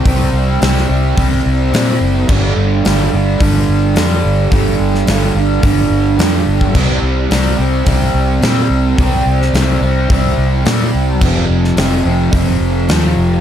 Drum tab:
CC |----------------|x---------------|----------------|x---------------|
HH |o---o---o---o---|----o---o---o---|o---o---o---o---|----o---o---o---|
SD |----oo------o---|----o-------o---|---oo-------o---|----o-------o---|
BD |o-------o-------|o-------o-------|o-------o------o|o-------o-------|

CC |----------------|x---------------|
HH |o---o---o---o---|----o---o---o---|
SD |---oo-------o---|---oo-------o---|
BD |o-------o-------|o-------o-------|